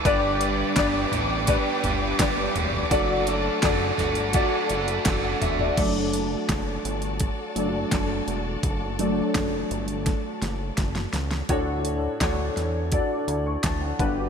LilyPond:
<<
  \new Staff \with { instrumentName = "String section" } { \time 4/4 \key d \major \tempo 4 = 84 << { <d'' d'''>1~ | <d'' d'''>1 | <a' a''>1~ | <a' a''>1 |
r1 | } \\ { <b' g''>1 | <a' fis''>1 | <fis' d''>1~ | <fis' d''>1 |
r1 | } >> }
  \new Staff \with { instrumentName = "Grand piano" } { \time 4/4 \key d \major << { a''16 r2. r8. | r2. r16 fis''16 e''16 d''16~ | d''16 r2. r8. | r1 |
r2 r8. cis'''16 a''16 fis''8 r16 | } \\ { <d' g' b' d''>4 <d' g' b' d''>4 <d' g' b' d''>4 <d' g' b' d''>4 | <d' fis' a' d''>4 <d' fis' a' d''>4 <d' fis' a' d''>4 r4 | r1 | r1 |
<d' fis' a' cis''>4 <d' fis' a' cis''>4 <d' fis' a' d''>8 r4 <d' fis' g' b'>8 | } >> }
  \new Staff \with { instrumentName = "Grand piano" } { \clef bass \time 4/4 \key d \major <g, d>4. r2 r8 | fis4. r2 r8 | <fis a d'>2~ <fis a d'>8 <fis a d'>8 r4 | r8 <fis a d'>8 r2. |
a,4. r2 <g, d>8 | }
  \new Staff \with { instrumentName = "Overdriven electric guitar" } { \time 4/4 \key d \major <g, d g b d' g'>8 <g b d' g'>8 <g, d g b d' g'>8 <g b d' g'>8 <g b d' g'>8 <g b d' g'>8 <g, d g b d' g'>8 <g b d' g'>8 | <fis a d' fis'>8 <a d' fis'>8 <fis a d' fis'>8 <a d' fis'>8 <fis a d' fis'>8 <a d' fis'>8 <fis a d' fis'>8 <a d' fis'>8 | r1 | r1 |
r1 | }
  \new Staff \with { instrumentName = "Analog synth bass" } { \clef bass \time 4/4 \key d \major g,,4 g,,8 a,,8. r16 g,,8 g,,8 e,,8 | fis,,4 fis,,8 g,,8. r16 fis,,8 fis,,8 e,,8 | fis,,4 fis,,8 g,,8. r16 fis,,8 fis,,8 e,,8 | fis,,4 fis,,8 g,,8. r16 fis,,8 fis,,8 cis,8 |
d,4 d,8 e,8. r16 d,8 d,8 g,,8 | }
  \new DrumStaff \with { instrumentName = "Drums" } \drummode { \time 4/4 <hh bd>8 hh8 <hc hh bd sn>8 <hh tomfh>8 <hh bd>8 <hh tomfh>8 <hc hh bd sn>8 <hh tomfh>16 tomfh16 | <hh bd>8 hh8 <hc hh bd sn>8 <hh sn tomfh>16 hh16 <hh bd>8 hh16 hh16 <hc hh bd sn>8 <hh tomfh>16 tomfh16 | <cymc hh bd>8 hh8 <hc hh bd sn>8 hh16 hh16 <hh bd>8 hh8 <hc hh bd sn>8 hh8 | <hh bd>8 hh8 <hc hh bd sn>8 hh16 hh16 <hh bd sn>8 <hh sn>8 <hh bd sn>16 sn16 <hh sn>16 sn16 |
<hh bd>8 hh8 <hc hh bd sn>8 <hh sn>8 <hh bd>8 hh8 <hc hh bd sn>8 <hh bd>8 | }
>>